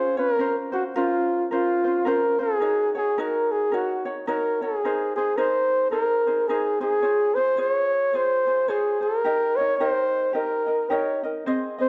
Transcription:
Already playing: C#4 F4 G#4 C5 C#5
0.17 C#4 F4 A#4 C#5
0.39 C#4 F4 A#4 C5
0.72 C#4 F4 F#4 C5
0.96 C#4 F4 A#4 C5
1.51 C#4 F4 A#4 C5
1.84 C#4 F4 C5
2.05 C#4 F4 A#4 C5
2.39 C#4 F4 G#4 C5
2.60 D#4 F#4 A#4 C#5
2.95 D#4 F#4 G#4 C#5
3.18 D#4 F#4 A#4 C#5
3.51 G#4
3.72 D#4 F#4 A#4 C#5
4.05 D#4 F#4 C#5
4.27 D#4 F#4 A#4 C#5
4.62 D#4 F#4 G#4 C#5
4.85 D#4 G#4 A#4 C5
5.16 D#4 G#4 C5
5.37 D#4 G#4 A#4 C5
5.91 D#4 G#4 A#4 C5
6.27 D#4 G#4 C5
6.48 D#4 G#4 A#4 C5
6.81 D#4 G#4 C5
7.02 F4 G#4 C5 C#5
7.35 F4 G#4 C5
7.57 F4 G#4 C#5
8.13 F4 G#4 C5 C#5
8.46 F4 G#4 C5
8.68 F4 G#4 C5 C#5
9.01 F4 G#4 A#4 C5
9.24 D#4 G4 A#4 D#5
9.56 A#4 C#5 D#5
9.61 D#4
9.76 C#5
9.80 D#4 G4 A#4 D#5
9.87 C5
10.33 D#4 G4 A#4 D#5
10.66 D#4 A#4 D#5
10.90 D#4 G4 A#4 C#5 D#5
11.23 D#4 A#4 D#5
11.46 C4 G#4 C5 D#5
11.79 C4 G#4 C5 D#5

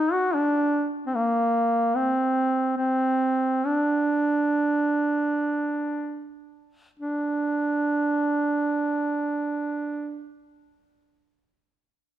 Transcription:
Already playing: D#4
0.12 F#4
0.34 D4
1.07 C4
1.15 A#3
1.95 C4
2.78 C4
3.66 D4
6.99 D4

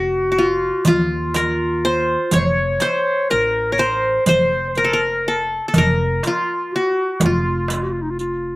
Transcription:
Already playing: F1 F#4
0.32 F#4
0.38 F4, darbuka ka
0.85 D#2 F4, riq, darbuka dum
1.34 A#4, riq, darbuka tek
1.85 C5
2.31 F1 C#5, riq, darbuka dum
2.39 C5
2.46 C#5
2.80 C5, riq, darbuka tek
3.29 A1 A#4, riq, darbuka ka
3.72 A#4 C#5
3.78 C5, riq
4.26 F1 C5, riq, darbuka dum
4.52 darbuka ka
4.70 C5
4.75 A#4, riq, darbuka ka
4.84 A4
4.93 A#4
5.26 A4, darbuka ka
5.68 A4
5.74 F1 A#4, riq, darbuka dum
5.78 A#4
6.23 F4, riq, darbuka tek
6.27 F4
6.72 F#4, darbuka ka
7.20 F1 F4, riq, darbuka dum
7.26 F4
7.68 riq, darbuka tek
7.83 F#4
7.92 F4
8.02 D#4
8.11 F4
8.16 F4, riq, darbuka ka

